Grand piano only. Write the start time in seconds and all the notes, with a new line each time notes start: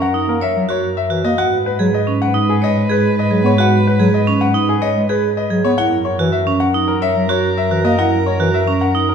0.02 F#5
0.29 A#4
0.42 E5
0.70 C#5
0.97 E5
1.25 D#5
1.38 F#5
1.66 B4
1.94 D#5
2.22 F#5
2.49 G#4
2.64 D#5
2.91 B4
3.19 D#5
3.46 C#5
3.60 F#5
3.87 B4
4.14 D#5
4.41 F#5
4.69 G#4
4.82 D#5
5.10 B4
5.37 D#5
5.64 C#5
5.78 F#5
6.05 C#5
6.32 E5
6.60 F#5
6.88 A#4
7.02 E5
7.30 C#5
7.57 E5
7.85 D#5
7.99 F#5
8.26 C#5
8.54 E5
8.81 F#5
9.09 A#4